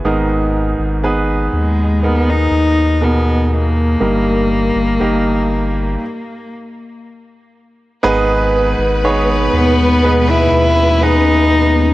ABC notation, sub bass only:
X:1
M:4/4
L:1/16
Q:1/4=60
K:G#m
V:1 name="Sub bass" clef=bass
G,,,3 G,,,3 D,,4 D,,6 | =G,,,3 G,,, G,,,4 z8 | G,,,3 G,,,3 D,,4 D,,6 |]